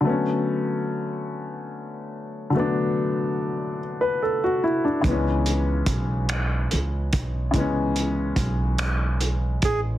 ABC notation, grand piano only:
X:1
M:6/8
L:1/16
Q:3/8=48
K:Bdor
V:1 name="Grand piano"
z12 | z6 z B A F E D- | D z8 z3 | z12 |]
V:2 name="Grand piano" clef=bass
[D,F,A,B,C]12 | [D,F,A,B,D]12 | [C,^D,E,G,B,C]12 | [C,E,G,B,C]12 |]